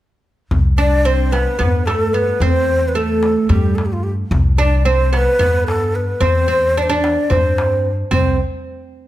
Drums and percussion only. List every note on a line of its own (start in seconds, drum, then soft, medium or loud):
0.51 darbuka dum medium
1.33 darbuka tek medium
1.61 darbuka dum medium
1.87 darbuka tek medium
2.42 darbuka dum medium
3.23 darbuka tek medium
3.50 darbuka dum medium
3.78 darbuka tek medium
4.32 darbuka dum medium
5.14 darbuka tek medium
5.41 darbuka dum medium
5.68 darbuka tek medium
6.21 darbuka dum medium
6.36 darbuka ka soft
7.04 darbuka tek medium
7.31 darbuka dum medium
7.58 darbuka tek medium
7.72 darbuka ka soft
7.85 darbuka ka soft
8.13 darbuka dum medium